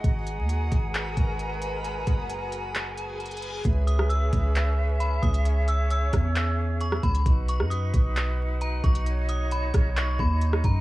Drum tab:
HH |x---x---x---x---x---x---x---x---|x---x---x---x---x---x---xxxxx---|x---x---x---x---x-------x---x-x-|x---x---x---x---x-------x---x-x-|
CP |----------------x---------------|----------------x---------------|----------------x---------------|----------------x---------------|
SD |--------------------------------|--------------------------------|------r-------------------------|------------r-------------r-----|
BD |o-----------o-------o-----------|----o---------------------------|o-----------o---------------o---|------------o---------------o---|

HH |x---x---x---x---x-------x---x-x-|x---x---x---x---x-------x---x---|
CP |----------------x---------------|----------------x---------------|
SD |------r-------------------------|------------r-------------r-----|
BD |o-----------o---------------o---|------------o-------o-------o---|